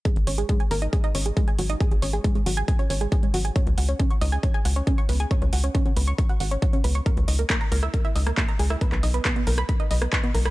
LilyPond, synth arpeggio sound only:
\new Staff \with { instrumentName = "Synth arpeggio sound" } { \time 4/4 \key gis \minor \tempo 4 = 137 gis'16 r16 cis''16 gis'16 gis16 gis''16 ais'16 dis''16 gis'16 dis''16 cis''16 gis'16 gis16 gis''16 fis'16 dis''16 | gis'16 gis'16 cis''16 gis'16 gis16 gis16 fis'16 gis''16 gis''16 cis''16 cis''16 gis'16 gis'16 gis16 fis'16 gis''16 | cis''16 r16 fis''16 cis''16 cis'16 cis'''16 dis''16 gis''16 cis''16 gis''16 fis''16 cis''16 cis'16 cis'''16 b'16 gis''16 | cis''16 cis''16 fis''16 cis''16 cis'16 cis'16 b'16 cis'''16 cis'''16 fis''16 fis''16 cis''16 cis''16 cis'16 b'16 cis'''16 |
ais'16 r16 dis''16 ais'16 ais16 ais''16 ais'16 e''16 ais'16 e''16 dis''16 ais'16 ais16 ais''16 gis'16 e''16 | b'16 b'16 dis''16 b'16 b16 b16 ais'16 b''16 b''16 dis''16 dis''16 b'16 b'16 b16 ais'16 b''16 | }